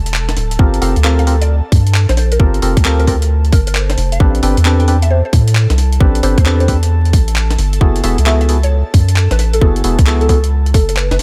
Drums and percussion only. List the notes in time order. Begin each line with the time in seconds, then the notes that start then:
0.06 closed hi-hat
0.14 clap
0.29 snare, closed hi-hat
0.37 snare, open hi-hat
0.51 closed hi-hat
0.59 kick
0.74 closed hi-hat
0.82 open hi-hat
0.96 closed hi-hat
1.04 clap
1.19 closed hi-hat
1.27 open hi-hat
1.42 closed hi-hat
1.72 kick, open hi-hat
1.87 closed hi-hat
1.95 clap
2.09 snare, closed hi-hat
2.17 snare, open hi-hat
2.32 closed hi-hat
2.40 kick
2.54 closed hi-hat
2.62 open hi-hat
2.77 kick, closed hi-hat
2.85 clap
3.00 closed hi-hat
3.07 kick, open hi-hat
3.22 closed hi-hat
3.45 closed hi-hat
3.52 kick, open hi-hat
3.67 closed hi-hat
3.75 clap
3.90 snare, closed hi-hat
3.98 snare, open hi-hat
4.12 closed hi-hat
4.20 kick
4.35 closed hi-hat
4.43 open hi-hat
4.57 closed hi-hat
4.65 clap
4.80 closed hi-hat
4.88 open hi-hat
5.02 closed hi-hat
5.33 kick, open hi-hat
5.48 closed hi-hat
5.55 clap
5.70 snare, closed hi-hat
5.78 snare, open hi-hat
5.93 closed hi-hat
6.01 kick
6.15 closed hi-hat
6.23 open hi-hat
6.38 kick, closed hi-hat
6.46 clap
6.60 closed hi-hat
6.68 kick, open hi-hat
6.83 closed hi-hat
7.05 closed hi-hat
7.13 kick, open hi-hat
7.28 closed hi-hat
7.36 clap
7.51 snare, closed hi-hat
7.59 snare, open hi-hat
7.73 closed hi-hat
7.81 kick
7.96 closed hi-hat
8.04 open hi-hat
8.18 closed hi-hat
8.26 clap
8.41 closed hi-hat
8.49 open hi-hat
8.63 closed hi-hat
8.94 kick, open hi-hat
9.09 closed hi-hat
9.16 clap
9.31 snare, closed hi-hat
9.39 snare, open hi-hat
9.54 closed hi-hat
9.61 kick
9.76 closed hi-hat
9.84 open hi-hat
9.99 kick, closed hi-hat
10.07 clap
10.21 closed hi-hat
10.29 kick, open hi-hat
10.44 closed hi-hat
10.66 closed hi-hat
10.74 kick, snare, open hi-hat
10.89 closed hi-hat
10.97 clap
11.11 snare, closed hi-hat
11.19 snare, open hi-hat